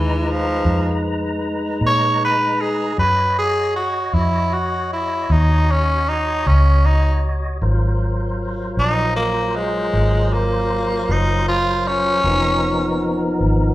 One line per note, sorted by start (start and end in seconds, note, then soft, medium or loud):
0.00 0.62 D#2 medium
0.00 0.33 E3 medium
0.00 2.93 G#3 medium
0.00 2.93 D#4 medium
0.00 2.93 B4 medium
0.00 2.93 A#5 medium
0.31 1.04 F3 medium
0.65 1.78 F2 medium
1.81 2.94 A#2 medium
1.87 2.22 C#5 loud
2.25 2.62 B4 medium
2.61 2.98 G#4 medium
2.97 4.11 F#2 medium
2.97 7.58 F#4 medium
2.97 3.36 B4 loud
2.97 7.58 C#5 medium
2.97 7.58 D#5 medium
3.39 3.75 G#4 loud
3.76 4.15 F#4 medium
4.14 5.26 F2 medium
4.14 4.54 E4 medium
4.53 4.90 F#4 medium
4.93 5.33 E4 medium
5.30 6.43 D#2 medium
5.30 5.72 D#4 loud
5.71 6.10 C#4 loud
6.09 6.49 D#4 loud
6.46 7.59 C#2 medium
6.46 6.87 C#4 loud
6.86 7.23 D#4 medium
7.61 8.74 G#1 medium
7.61 12.21 F#3 medium
7.61 12.21 F4 medium
7.61 12.21 A#4 medium
7.61 12.21 C5 medium
8.77 9.90 A#1 medium
8.77 9.16 D#4 loud
9.16 9.57 A#3 medium
9.56 10.35 G#3 loud
9.93 11.06 G#1 medium
10.33 11.14 A#3 loud
11.09 12.21 F#1 loud
11.09 11.48 D#4 medium
11.48 11.89 F4 loud
11.87 13.37 C#4 loud
12.24 13.36 F1 medium
12.24 13.74 F3 medium
12.24 13.74 B3 medium
12.24 13.74 D#4 medium
12.24 13.74 A#4 medium
13.41 13.74 G#1 medium